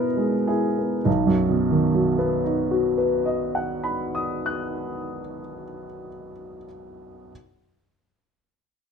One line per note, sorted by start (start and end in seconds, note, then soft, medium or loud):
0.00 1.02 B2 soft
0.00 0.35 B3 soft
0.00 1.04 D#4 soft
0.00 0.48 E4 soft
0.00 0.48 A#4 medium
0.17 0.66 G#3 soft
0.47 0.95 E4 soft
0.47 1.05 G#4 soft
0.78 1.06 B3 soft
1.04 5.18 B1 soft
1.04 2.43 D#4 soft
1.27 5.39 F#2 soft
1.49 5.62 B2 soft
1.71 5.83 D#3 soft
1.94 6.07 F#3 soft
2.19 6.31 B3 soft
2.44 6.57 D#4 soft
2.71 6.65 F#4 soft
2.98 6.65 B4 soft
3.26 6.65 D#5 soft
3.55 6.65 F#5 soft
3.84 6.65 B5 soft
4.15 6.65 D#6 soft
4.46 6.65 F#6 soft